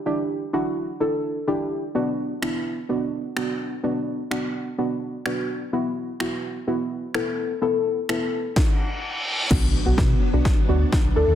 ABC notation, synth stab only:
X:1
M:4/4
L:1/16
Q:1/4=127
K:Bm
V:1 name="Synth stab"
[DEG]3 z [DEF]3 z [DEA]3 z [DEG]3 z | [B,DF]3 z [B,DE]3 z [B,DF]3 z [B,DF]3 z | [B,DF]3 z [B,DF]3 z [B,DF]3 z [B,DF]3 z | [B,EF]3 z [B,EF]3 z [B,EF]3 z [B,EA]3 z |
[B,EA]3 z [B,EA]3 z8 z | [B,DF]2 z [B,DF]3 z [B,DF]2 z [B,DF]3 z [DEA]2 |]